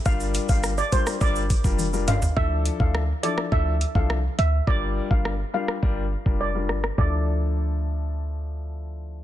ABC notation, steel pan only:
X:1
M:4/4
L:1/16
Q:1/4=104
K:Dm
V:1 name="Steel pan"
f2 z f z d c z d3 z3 f z | e z2 f z2 d z e z2 f z2 e z | d z2 f z2 f z4 z d3 z | d12 z4 |]